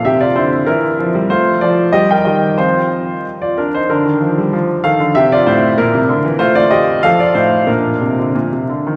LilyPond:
<<
  \new Staff \with { instrumentName = "Grand piano" } { \time 2/4 \key bes \major \tempo 4 = 95 <g' e''>16 <f' d''>16 <e' c''>8 <e' bes'>4 | <f' c''>8 <f' d''>8 <g' ees''>16 <bes' g''>16 <g' ees''>8 | <f' c''>4 r16 <f' d''>16 <d' bes'>16 <ees' c''>16 | <d' bes'>4. <a' f''>8 |
<g' e''>16 <f' d''>16 <e' c''>8 <e' bes'>4 | <f' c''>16 <f' d''>16 <g' ees''>8 <a' f''>16 <f' d''>16 <ees' c''>8 | <d' bes'>4 r4 | }
  \new Staff \with { instrumentName = "Grand piano" } { \clef bass \time 2/4 \key bes \major c8 d8 e8 f16 g16 | a8 f8 g8 ees8 | <f c'>4 r4 | d16 ees16 f16 g16 f8 ees16 d16 |
c8 a,8 bes,16 c16 d16 e16 | a4 f8 a,8 | bes,8 c16 d16 bes,16 c16 d16 ees16 | }
>>